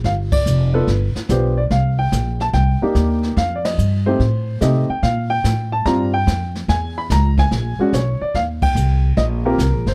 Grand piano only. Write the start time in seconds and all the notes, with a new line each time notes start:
0.05 F5
0.32 D5
0.73 B3 D4 F4 A4 B4
1.29 B3 D4 F4 G4 C5
1.58 D5
1.71 F5
1.99 G5
2.41 A5
2.54 G5
2.82 A#3 D4 D#4 G4
3.38 F5
3.55 D5
3.65 D#5
4.06 A3 C4 D#4 G4 C5
4.61 A3 C4 D#4 G4 D#5
4.90 G5
5.03 F5
5.30 G5
5.72 A5
5.86 G3 C4 D4 F4 A#5
6.14 G5
6.69 G#5
6.98 B5
7.12 A#5
7.39 G#5
7.79 G#3 C#4 D4 F#4
7.94 C#5
8.21 D5
8.35 F5
8.63 G5
9.17 D#5
9.45 A#3 C4 F4 G4 A#4
9.88 C5